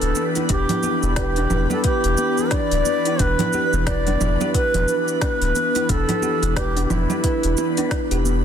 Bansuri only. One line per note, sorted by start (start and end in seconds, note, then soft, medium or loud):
0.00 0.24 A4 loud
0.51 1.14 G4 loud
1.18 1.68 G4 medium
1.72 1.84 A4 loud
1.85 2.55 G4 loud
2.53 3.23 D5 loud
3.21 3.87 B4 loud
3.88 4.51 D5 loud
4.56 4.94 B4 loud
5.23 5.92 B4 loud
5.90 6.57 A4 loud
6.57 6.83 G4 loud
6.85 6.92 G4 medium
6.91 7.92 E4 loud